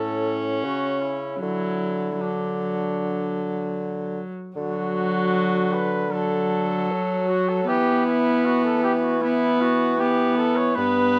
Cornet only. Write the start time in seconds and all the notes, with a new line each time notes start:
Already playing: A4
0.62 F#4
1.01 E4
1.41 E4
2.21 D4
4.56 F#4
5.73 B4
6.12 A4
7.29 F#4
7.49 A4
7.68 G4
8.06 E4
8.45 F#4
8.64 A4
8.83 G4
9.03 F#4
9.22 E4
9.61 F#4
10.00 G4
10.37 A4
10.56 C#5
10.75 B4